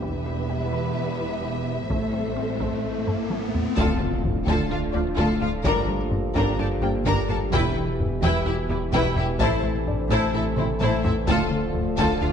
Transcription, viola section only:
0, 0, Header, 1, 2, 480
1, 0, Start_track
1, 0, Key_signature, -1, "minor"
1, 0, Tempo, 468750
1, 25, Time_signature, 4, 2, 24, 8
1, 12621, End_track
2, 0, Start_track
2, 0, Title_t, "Viola section"
2, 0, Program_c, 0, 48
2, 0, Note_on_c, 0, 67, 41
2, 22, Note_on_c, 0, 59, 53
2, 1904, Note_off_c, 0, 67, 0
2, 1943, Note_off_c, 0, 59, 0
2, 1947, Note_on_c, 0, 69, 45
2, 1950, Note_on_c, 0, 57, 47
2, 3627, Note_off_c, 0, 69, 0
2, 3628, Note_off_c, 0, 57, 0
2, 3866, Note_on_c, 0, 65, 84
2, 4089, Note_off_c, 0, 65, 0
2, 4582, Note_on_c, 0, 65, 80
2, 4807, Note_off_c, 0, 65, 0
2, 4826, Note_on_c, 0, 65, 62
2, 4908, Note_off_c, 0, 65, 0
2, 5064, Note_on_c, 0, 65, 68
2, 5146, Note_off_c, 0, 65, 0
2, 5297, Note_on_c, 0, 65, 87
2, 5524, Note_off_c, 0, 65, 0
2, 5543, Note_on_c, 0, 65, 67
2, 5625, Note_off_c, 0, 65, 0
2, 5774, Note_on_c, 0, 62, 83
2, 6002, Note_off_c, 0, 62, 0
2, 6505, Note_on_c, 0, 62, 82
2, 6728, Note_off_c, 0, 62, 0
2, 6739, Note_on_c, 0, 62, 74
2, 6821, Note_off_c, 0, 62, 0
2, 6988, Note_on_c, 0, 62, 60
2, 7070, Note_off_c, 0, 62, 0
2, 7227, Note_on_c, 0, 62, 81
2, 7449, Note_off_c, 0, 62, 0
2, 7465, Note_on_c, 0, 62, 66
2, 7547, Note_off_c, 0, 62, 0
2, 7706, Note_on_c, 0, 64, 87
2, 7929, Note_off_c, 0, 64, 0
2, 8431, Note_on_c, 0, 64, 102
2, 8651, Note_off_c, 0, 64, 0
2, 8675, Note_on_c, 0, 64, 64
2, 8757, Note_off_c, 0, 64, 0
2, 8910, Note_on_c, 0, 64, 63
2, 8992, Note_off_c, 0, 64, 0
2, 9155, Note_on_c, 0, 64, 98
2, 9373, Note_off_c, 0, 64, 0
2, 9390, Note_on_c, 0, 64, 72
2, 9472, Note_off_c, 0, 64, 0
2, 9636, Note_on_c, 0, 64, 91
2, 9854, Note_off_c, 0, 64, 0
2, 10350, Note_on_c, 0, 64, 98
2, 10571, Note_off_c, 0, 64, 0
2, 10595, Note_on_c, 0, 64, 74
2, 10677, Note_off_c, 0, 64, 0
2, 10831, Note_on_c, 0, 64, 75
2, 10913, Note_off_c, 0, 64, 0
2, 11075, Note_on_c, 0, 64, 92
2, 11293, Note_off_c, 0, 64, 0
2, 11316, Note_on_c, 0, 64, 75
2, 11398, Note_off_c, 0, 64, 0
2, 11562, Note_on_c, 0, 65, 100
2, 11777, Note_off_c, 0, 65, 0
2, 12280, Note_on_c, 0, 65, 92
2, 12496, Note_off_c, 0, 65, 0
2, 12524, Note_on_c, 0, 65, 64
2, 12605, Note_off_c, 0, 65, 0
2, 12621, End_track
0, 0, End_of_file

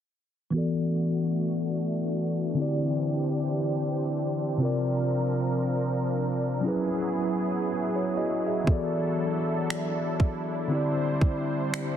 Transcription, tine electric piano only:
0, 0, Header, 1, 2, 480
1, 0, Start_track
1, 0, Key_signature, 1, "minor"
1, 0, Tempo, 1016949
1, 254, Time_signature, 4, 2, 24, 8
1, 5648, End_track
2, 0, Start_track
2, 0, Title_t, "Tine electric piano"
2, 0, Program_c, 0, 4
2, 238, Note_on_c, 0, 52, 67
2, 246, Note_on_c, 0, 59, 63
2, 256, Note_on_c, 0, 66, 59
2, 265, Note_on_c, 0, 69, 62
2, 274, Note_on_c, 0, 74, 78
2, 343, Control_c, 0, 64, 127
2, 1187, Note_off_c, 0, 52, 0
2, 1191, Note_off_c, 0, 59, 0
2, 1196, Note_off_c, 0, 66, 0
2, 1199, Note_on_c, 0, 50, 65
2, 1201, Note_off_c, 0, 69, 0
2, 1205, Note_off_c, 0, 74, 0
2, 1209, Note_on_c, 0, 60, 64
2, 1217, Note_on_c, 0, 64, 60
2, 1221, Control_c, 0, 64, 0
2, 1226, Note_on_c, 0, 67, 60
2, 1234, Note_on_c, 0, 74, 78
2, 1311, Control_c, 0, 64, 127
2, 2148, Note_off_c, 0, 50, 0
2, 2152, Note_off_c, 0, 60, 0
2, 2157, Note_off_c, 0, 64, 0
2, 2159, Note_on_c, 0, 48, 67
2, 2161, Note_off_c, 0, 67, 0
2, 2165, Note_off_c, 0, 74, 0
2, 2168, Note_on_c, 0, 60, 62
2, 2177, Note_on_c, 0, 65, 61
2, 2180, Control_c, 0, 64, 0
2, 2185, Note_on_c, 0, 70, 64
2, 2195, Note_on_c, 0, 74, 77
2, 2256, Control_c, 0, 64, 127
2, 3108, Note_off_c, 0, 48, 0
2, 3112, Note_off_c, 0, 60, 0
2, 3117, Note_off_c, 0, 65, 0
2, 3119, Note_on_c, 0, 54, 67
2, 3121, Note_off_c, 0, 70, 0
2, 3125, Note_off_c, 0, 74, 0
2, 3127, Note_on_c, 0, 61, 64
2, 3136, Note_on_c, 0, 64, 66
2, 3141, Control_c, 0, 64, 0
2, 3145, Note_on_c, 0, 68, 66
2, 3154, Note_on_c, 0, 71, 77
2, 3235, Control_c, 0, 64, 127
2, 3606, Note_off_c, 0, 64, 0
2, 3610, Note_off_c, 0, 68, 0
2, 3615, Note_off_c, 0, 71, 0
2, 3756, Note_on_c, 0, 73, 58
2, 3758, Note_on_c, 0, 64, 51
2, 3850, Note_off_c, 0, 73, 0
2, 3851, Note_off_c, 0, 64, 0
2, 3857, Note_on_c, 0, 75, 66
2, 3860, Note_on_c, 0, 66, 57
2, 3988, Note_off_c, 0, 75, 0
2, 3989, Note_off_c, 0, 66, 0
2, 3996, Note_on_c, 0, 76, 61
2, 3999, Note_on_c, 0, 68, 52
2, 4068, Note_off_c, 0, 54, 0
2, 4072, Note_off_c, 0, 61, 0
2, 4078, Note_on_c, 0, 52, 65
2, 4088, Note_on_c, 0, 59, 64
2, 4097, Note_on_c, 0, 66, 66
2, 4101, Control_c, 0, 64, 0
2, 4106, Note_on_c, 0, 69, 64
2, 4115, Note_on_c, 0, 74, 78
2, 4185, Control_c, 0, 64, 127
2, 4223, Note_off_c, 0, 76, 0
2, 4224, Note_off_c, 0, 68, 0
2, 5027, Note_off_c, 0, 52, 0
2, 5032, Note_off_c, 0, 59, 0
2, 5037, Note_off_c, 0, 66, 0
2, 5039, Note_on_c, 0, 50, 70
2, 5041, Note_off_c, 0, 69, 0
2, 5045, Note_off_c, 0, 74, 0
2, 5048, Note_on_c, 0, 60, 67
2, 5057, Note_on_c, 0, 64, 65
2, 5060, Control_c, 0, 64, 0
2, 5066, Note_on_c, 0, 67, 64
2, 5075, Note_on_c, 0, 74, 75
2, 5150, Control_c, 0, 64, 127
2, 5648, Note_off_c, 0, 50, 0
2, 5648, Note_off_c, 0, 60, 0
2, 5648, Note_off_c, 0, 64, 0
2, 5648, Note_off_c, 0, 67, 0
2, 5648, Note_off_c, 0, 74, 0
2, 5648, End_track
0, 0, End_of_file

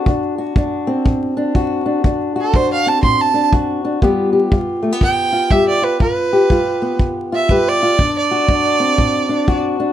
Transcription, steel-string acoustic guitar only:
0, 0, Header, 1, 2, 480
1, 0, Start_track
1, 0, Tempo, 495868
1, 56, Time_signature, 4, 2, 24, 8
1, 9608, End_track
2, 0, Start_track
2, 0, Title_t, "Steel-string acoustic guitar"
2, 0, Program_c, 0, 25
2, 0, Note_on_c, 0, 60, 54
2, 0, Note_on_c, 0, 66, 65
2, 68, Note_on_c, 0, 50, 66
2, 76, Note_on_c, 0, 62, 53
2, 97, Note_off_c, 0, 60, 0
2, 367, Note_off_c, 0, 66, 0
2, 371, Note_on_c, 0, 66, 54
2, 505, Note_off_c, 0, 50, 0
2, 542, Note_on_c, 0, 54, 65
2, 545, Note_off_c, 0, 62, 0
2, 549, Note_on_c, 0, 62, 60
2, 844, Note_on_c, 0, 60, 56
2, 982, Note_off_c, 0, 54, 0
2, 1018, Note_on_c, 0, 45, 64
2, 1321, Note_off_c, 0, 62, 0
2, 1325, Note_on_c, 0, 62, 67
2, 1460, Note_off_c, 0, 45, 0
2, 1495, Note_off_c, 0, 66, 0
2, 1501, Note_on_c, 0, 54, 52
2, 1506, Note_on_c, 0, 66, 63
2, 1794, Note_off_c, 0, 62, 0
2, 1797, Note_on_c, 0, 62, 51
2, 1941, Note_off_c, 0, 54, 0
2, 1959, Note_off_c, 0, 60, 0
2, 1977, Note_on_c, 0, 50, 59
2, 1978, Note_off_c, 0, 62, 0
2, 1982, Note_on_c, 0, 62, 59
2, 2270, Note_off_c, 0, 66, 0
2, 2282, Note_on_c, 0, 66, 57
2, 2419, Note_off_c, 0, 50, 0
2, 2463, Note_on_c, 0, 54, 54
2, 2465, Note_off_c, 0, 62, 0
2, 2469, Note_on_c, 0, 62, 55
2, 2770, Note_on_c, 0, 60, 46
2, 2903, Note_off_c, 0, 54, 0
2, 2933, Note_on_c, 0, 45, 60
2, 3229, Note_off_c, 0, 62, 0
2, 3233, Note_on_c, 0, 62, 61
2, 3377, Note_off_c, 0, 45, 0
2, 3407, Note_off_c, 0, 66, 0
2, 3413, Note_on_c, 0, 54, 61
2, 3419, Note_on_c, 0, 66, 63
2, 3719, Note_off_c, 0, 62, 0
2, 3723, Note_on_c, 0, 62, 59
2, 3857, Note_off_c, 0, 54, 0
2, 3882, Note_off_c, 0, 60, 0
2, 3890, Note_on_c, 0, 43, 66
2, 3896, Note_on_c, 0, 55, 56
2, 3897, Note_off_c, 0, 66, 0
2, 3900, Note_off_c, 0, 62, 0
2, 3900, Note_on_c, 0, 59, 59
2, 3904, Note_on_c, 0, 65, 55
2, 3909, Note_on_c, 0, 67, 60
2, 4185, Note_off_c, 0, 67, 0
2, 4189, Note_on_c, 0, 67, 53
2, 4335, Note_off_c, 0, 43, 0
2, 4367, Note_off_c, 0, 55, 0
2, 4371, Note_on_c, 0, 55, 58
2, 4374, Note_off_c, 0, 65, 0
2, 4378, Note_on_c, 0, 65, 55
2, 4666, Note_off_c, 0, 59, 0
2, 4670, Note_on_c, 0, 57, 58
2, 4766, Note_off_c, 0, 57, 0
2, 4766, Note_on_c, 0, 59, 44
2, 4816, Note_off_c, 0, 55, 0
2, 4863, Note_on_c, 0, 50, 59
2, 5143, Note_off_c, 0, 65, 0
2, 5155, Note_on_c, 0, 65, 61
2, 5301, Note_off_c, 0, 50, 0
2, 5333, Note_off_c, 0, 67, 0
2, 5342, Note_on_c, 0, 55, 62
2, 5348, Note_on_c, 0, 67, 60
2, 5623, Note_off_c, 0, 65, 0
2, 5634, Note_on_c, 0, 65, 54
2, 5781, Note_off_c, 0, 55, 0
2, 5794, Note_off_c, 0, 65, 0
2, 5799, Note_off_c, 0, 67, 0
2, 5816, Note_off_c, 0, 59, 0
2, 5819, Note_on_c, 0, 43, 71
2, 5824, Note_on_c, 0, 65, 54
2, 6125, Note_on_c, 0, 67, 59
2, 6260, Note_off_c, 0, 43, 0
2, 6291, Note_off_c, 0, 65, 0
2, 6300, Note_on_c, 0, 55, 60
2, 6303, Note_on_c, 0, 65, 60
2, 6600, Note_on_c, 0, 59, 55
2, 6740, Note_off_c, 0, 55, 0
2, 6780, Note_on_c, 0, 50, 58
2, 7074, Note_off_c, 0, 65, 0
2, 7089, Note_on_c, 0, 65, 68
2, 7220, Note_off_c, 0, 50, 0
2, 7261, Note_off_c, 0, 67, 0
2, 7269, Note_on_c, 0, 55, 65
2, 7276, Note_on_c, 0, 67, 62
2, 7560, Note_off_c, 0, 65, 0
2, 7575, Note_on_c, 0, 65, 65
2, 7705, Note_off_c, 0, 55, 0
2, 7717, Note_off_c, 0, 59, 0
2, 7723, Note_off_c, 0, 67, 0
2, 7724, Note_off_c, 0, 65, 0
2, 7740, Note_on_c, 0, 50, 72
2, 7748, Note_on_c, 0, 62, 55
2, 8046, Note_on_c, 0, 66, 54
2, 8180, Note_off_c, 0, 50, 0
2, 8216, Note_on_c, 0, 54, 63
2, 8219, Note_off_c, 0, 62, 0
2, 8223, Note_on_c, 0, 62, 57
2, 8516, Note_on_c, 0, 60, 52
2, 8659, Note_off_c, 0, 54, 0
2, 8692, Note_on_c, 0, 45, 65
2, 8982, Note_off_c, 0, 62, 0
2, 8994, Note_on_c, 0, 62, 57
2, 9136, Note_off_c, 0, 45, 0
2, 9164, Note_off_c, 0, 66, 0
2, 9169, Note_on_c, 0, 54, 66
2, 9176, Note_on_c, 0, 66, 66
2, 9472, Note_off_c, 0, 62, 0
2, 9483, Note_on_c, 0, 62, 58
2, 9608, Note_off_c, 0, 54, 0
2, 9608, Note_off_c, 0, 60, 0
2, 9608, Note_off_c, 0, 62, 0
2, 9608, Note_off_c, 0, 66, 0
2, 9608, End_track
0, 0, End_of_file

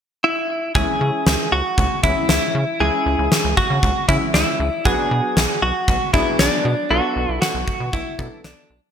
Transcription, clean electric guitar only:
0, 0, Header, 1, 2, 480
1, 0, Start_track
1, 0, Tempo, 512821
1, 704, Time_signature, 4, 2, 24, 8
1, 8342, End_track
2, 0, Start_track
2, 0, Title_t, "Clean electric guitar"
2, 0, Program_c, 0, 27
2, 225, Note_on_c, 0, 64, 91
2, 671, Note_off_c, 0, 64, 0
2, 706, Note_on_c, 0, 68, 104
2, 1422, Note_off_c, 0, 68, 0
2, 1425, Note_on_c, 0, 66, 96
2, 1900, Note_off_c, 0, 66, 0
2, 1904, Note_on_c, 0, 64, 88
2, 2127, Note_off_c, 0, 64, 0
2, 2143, Note_on_c, 0, 64, 91
2, 2625, Note_on_c, 0, 68, 100
2, 2637, Note_off_c, 0, 64, 0
2, 3340, Note_off_c, 0, 68, 0
2, 3344, Note_on_c, 0, 66, 94
2, 3820, Note_off_c, 0, 66, 0
2, 3823, Note_on_c, 0, 64, 87
2, 3888, Note_off_c, 0, 64, 0
2, 4062, Note_on_c, 0, 64, 85
2, 4543, Note_on_c, 0, 68, 97
2, 4557, Note_off_c, 0, 64, 0
2, 5260, Note_off_c, 0, 68, 0
2, 5264, Note_on_c, 0, 66, 91
2, 5739, Note_off_c, 0, 66, 0
2, 5742, Note_on_c, 0, 64, 81
2, 5966, Note_off_c, 0, 64, 0
2, 5984, Note_on_c, 0, 62, 83
2, 6463, Note_on_c, 0, 66, 91
2, 6478, Note_off_c, 0, 62, 0
2, 6930, Note_off_c, 0, 66, 0
2, 6941, Note_on_c, 0, 66, 88
2, 7424, Note_on_c, 0, 64, 82
2, 7437, Note_off_c, 0, 66, 0
2, 7870, Note_off_c, 0, 64, 0
2, 7903, Note_on_c, 0, 62, 71
2, 8238, Note_off_c, 0, 62, 0
2, 8342, End_track
0, 0, End_of_file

